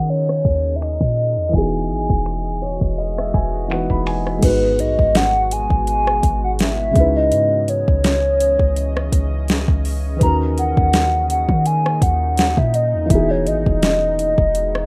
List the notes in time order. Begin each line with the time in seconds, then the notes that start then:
Already playing: C#3 D#3 C#4 D#4 F#4 A#4 B4 D#5
0.09 C#5, closed hi-hat
0.29 cross-stick
0.45 D#2, kick, closed hi-hat
0.76 E5
0.81 D#5, finger snap, closed hi-hat
1.01 A#2, kick
1.17 closed hi-hat
1.37 E2
1.49 E3 B3
1.53 E1 E3 G#3 D#4 F#4 G#5, kick, closed hi-hat
1.58 G#4
1.90 G#1, closed hi-hat
2.10 E1, kick
2.26 finger snap, closed hi-hat
2.62 C#5, closed hi-hat
2.81 E1, kick
2.98 D#5, closed hi-hat
3.18 E5, cross-stick
3.34 E1 G#5, kick, closed hi-hat
3.68 E3 B3 D#4 F#4 F#5, finger snap, closed hi-hat
3.73 B4
3.90 E1 B5, kick
4.06 G#5, finger snap, open hi-hat
4.27 cross-stick
4.38 G#2 G#3
4.42 G#1 B2 G#3 B3 F#4 B4, kick, closed hi-hat, crash
4.47 B4
4.79 A#1 D#5, closed hi-hat
4.99 G#1, kick
5.15 F#5, snare, closed hi-hat
5.51 G#5, closed hi-hat
5.70 G#1, kick
5.87 G#5, closed hi-hat
6.07 cross-stick
6.23 G#1, kick, closed hi-hat
6.44 F#5
6.59 E5, snare, closed hi-hat
6.91 C#3 G#3
6.96 C#2 C#3 E3 C#4 D#4 E4 D#5, kick, closed hi-hat
7.00 B4
7.17 D#5
7.32 G#2, closed hi-hat
7.68 C#5, closed hi-hat
7.88 C#2, kick
8.04 snare, closed hi-hat
8.40 closed hi-hat
8.59 C#2, kick
8.76 closed hi-hat
8.97 cross-stick
9.12 C#2, kick, closed hi-hat
9.48 snare, closed hi-hat
9.68 C#2, kick
9.85 open hi-hat
10.17 D#3 B4
10.21 D#2 A#2 C#4 D#4 F#4 A#5, kick, closed hi-hat
10.26 A#4
10.58 F#5, closed hi-hat
10.77 D#2, kick
10.93 snare, closed hi-hat
11.30 F#5, closed hi-hat
11.49 D#3, kick
11.66 G#5, closed hi-hat
11.86 cross-stick
12.02 D#2 F#5, kick, closed hi-hat
12.37 F#5, snare, closed hi-hat
12.57 A#2 E5, kick
12.74 D#5, closed hi-hat
12.94 E2
13.06 E3 B3
13.10 E1 E3 G#3 D#4 F#4 E5, kick, closed hi-hat
13.15 G#4
13.31 C#5
13.47 G#1 D#5, closed hi-hat
13.66 E1, kick
13.83 snare, closed hi-hat
14.19 closed hi-hat
14.38 E1, kick
14.55 closed hi-hat
14.75 cross-stick